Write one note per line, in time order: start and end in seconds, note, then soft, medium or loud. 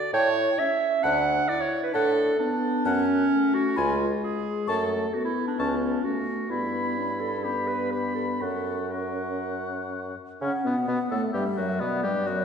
0.00 0.14 F#4 medium
0.00 0.13 D5 medium
0.13 0.51 A2 medium
0.13 0.61 E4 medium
0.13 0.60 C#5 loud
0.13 0.29 G5 medium
0.13 0.34 A5 medium
0.59 1.04 C#4 medium
0.59 1.05 E5 medium
1.03 1.42 D2 medium
1.03 1.51 D4 medium
1.03 1.50 F#5 loud
1.03 1.20 F#5 medium
1.03 1.25 A5 medium
1.49 1.96 E4 medium
1.49 1.62 D5 loud
1.61 1.82 C#5 medium
1.83 1.94 B4 medium
1.93 2.32 A2 medium
1.93 2.39 D4 medium
1.93 2.39 A4 loud
1.93 2.11 F#5 medium
1.93 2.15 A5 medium
2.39 3.03 B3 medium
2.39 2.87 D4 medium
2.85 3.24 F#2 medium
2.85 3.56 C#4 loud
2.85 3.02 F#5 medium
2.85 3.07 A5 medium
3.32 3.75 A3 medium
3.54 3.79 F#4 medium
3.76 4.15 C#2 medium
3.76 4.70 G#3 medium
3.76 4.10 F4 loud
3.76 3.94 G#5 medium
3.76 3.98 B5 medium
4.23 4.68 G#4 medium
4.67 5.06 F#2 medium
4.67 5.13 A3 medium
4.67 5.15 A4 medium
4.67 4.84 A5 medium
4.67 4.89 C#6 medium
5.14 6.03 B3 medium
5.14 5.24 F#4 medium
5.25 5.47 E4 medium
5.47 5.61 D4 medium
5.59 5.97 C#2 medium
5.59 6.06 C#4 medium
5.59 5.75 A5 medium
5.59 5.80 C#6 medium
6.04 6.52 A3 medium
6.04 6.52 F#4 medium
6.50 8.37 G2 medium
6.50 6.99 B3 medium
6.50 7.22 E4 medium
6.50 7.40 B5 medium
6.50 7.41 B5 soft
6.97 7.44 C#4 medium
7.21 7.46 A4 medium
7.44 8.43 B3 medium
7.44 7.69 G4 medium
7.44 7.90 B5 soft
7.44 7.91 B5 soft
7.67 7.93 B4 medium
7.91 8.14 G4 medium
7.91 8.43 B5 soft
7.91 8.43 B5 medium
8.15 8.27 A4 medium
8.41 10.14 F#2 soft
8.41 10.18 C#4 soft
8.41 8.93 A4 medium
8.41 8.92 F#5 soft
8.41 8.91 C#6 soft
8.91 9.92 A#4 soft
8.91 10.15 F#5 soft
8.91 10.15 C#6 soft
10.41 10.52 C#3 medium
10.41 10.51 C#4 medium
10.41 10.52 C#4 medium
10.41 10.67 C#4 medium
10.41 11.30 F#5 medium
10.65 10.87 B2 soft
10.65 10.88 B3 medium
10.65 10.76 B3 soft
10.88 10.98 B2 medium
10.88 10.99 B3 medium
10.88 11.11 B3 medium
11.11 11.22 A2 soft
11.11 11.34 A3 soft
11.11 11.34 A3 medium
11.11 11.22 A4 medium
11.34 11.44 G2 medium
11.34 11.59 G3 medium
11.34 11.44 G4 medium
11.34 11.82 E5 medium
11.57 11.80 F#2 medium
11.57 11.83 F#3 medium
11.57 11.80 F#3 medium
11.57 11.82 F#4 medium
11.80 12.06 B2 medium
11.80 12.03 B3 medium
11.80 12.06 B3 medium
11.80 12.30 D5 medium
12.03 12.29 G2 medium
12.03 12.15 G3 medium
12.03 12.29 G3 medium
12.03 12.29 G4 medium
12.27 12.45 F#2 medium
12.27 12.45 F#3 medium
12.27 12.45 F#4 medium
12.27 12.45 C#5 medium